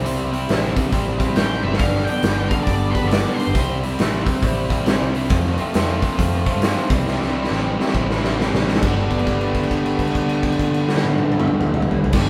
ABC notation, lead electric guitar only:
X:1
M:4/4
L:1/8
Q:"Swing" 1/4=136
K:Gmix
V:1 name="Lead electric guitar"
z6 g e | f g2 f d B d c- | c z6 z | z8 |
z8 | z8 | z8 |]